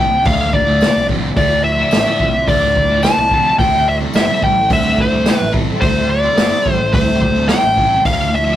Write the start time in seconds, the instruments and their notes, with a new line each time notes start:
Already playing: string machine F3 E4 D5, lead electric guitar G5
0.00 fingered electric bass C2
0.25 fingered electric bass D2, distorted electric guitar D2 A2 D3, lead electric guitar F5, kick, open hi-hat
0.52 lead electric guitar D5, muted distorted electric guitar stroke, kick
0.67 distorted electric guitar D2 A2 D3
0.81 snare, open hi-hat, tambourine
0.96 fingered electric bass C2
1.09 distorted electric guitar D2 A2 D3, kick
1.36 fingered electric bass D2, distorted electric guitar D2 A2 D3, lead electric guitar D5, kick, open hi-hat
1.64 lead electric guitar E5
1.78 distorted electric guitar D2 A2 D3
1.91 fingered electric bass A1, muted distorted electric guitar stroke, snare, open hi-hat, tambourine
2.06 distorted electric guitar D2 A2 D3
2.20 fingered electric bass C2, kick
2.48 distorted electric guitar D2 A2 D3, fingered electric bass D2, lead electric guitar D5, kick, open hi-hat
2.75 muted distorted electric guitar stroke, kick
2.90 distorted electric guitar D2 A2 D3
3.03 lead electric guitar A5, snare, open hi-hat, tambourine
3.17 fingered electric bass C2
3.31 distorted electric guitar D2 A2 D3, kick
3.58 fingered electric bass D2, distorted electric guitar C3 G3 C4, string machine A3 C5, lead electric guitar G5, kick, open hi-hat
3.88 lead electric guitar E5
4.01 distorted electric guitar C3 G3 C4
4.13 fingered electric bass G1, lead electric guitar E5, muted distorted electric guitar stroke, snare, open hi-hat, tambourine
4.28 distorted electric guitar C3 G3 C4
4.43 fingered electric bass A1, lead electric guitar G5, kick
4.70 fingered electric bass D2, distorted electric guitar C3 G3 C4, lead electric guitar E5, kick, open hi-hat
4.98 lead electric guitar C5, muted distorted electric guitar stroke, kick
5.11 distorted electric guitar C3 G3 C4
5.26 snare, open hi-hat, tambourine
5.38 fingered electric bass A1, lead electric guitar B4
5.52 distorted electric guitar C3 G3 C4, kick
5.81 fingered electric bass D2, distorted electric guitar C3 G3 C4, lead electric guitar C5, kick, open hi-hat
6.10 lead electric guitar D5
6.24 distorted electric guitar C3 G3 C4
6.37 fingered electric bass G1, muted distorted electric guitar stroke, snare, open hi-hat, tambourine
6.50 distorted electric guitar C3 G3 C4
6.66 fingered electric bass A1, kick
6.72 lead electric guitar C5
6.93 fingered electric bass D2, distorted electric guitar C3 G3 C4, lead electric guitar C5, kick, open hi-hat
7.21 muted distorted electric guitar stroke, kick
7.36 distorted electric guitar C3 G3 C4
7.48 lead electric guitar G5, snare, open hi-hat, tambourine
7.63 fingered electric bass A1
7.77 distorted electric guitar C3 G3 C4, kick
8.05 fingered electric bass D2, distorted electric guitar D2 A2 D3, string machine F3 D5, lead electric guitar F5, kick, open hi-hat
8.35 lead electric guitar E5
8.47 distorted electric guitar D2 A2 D3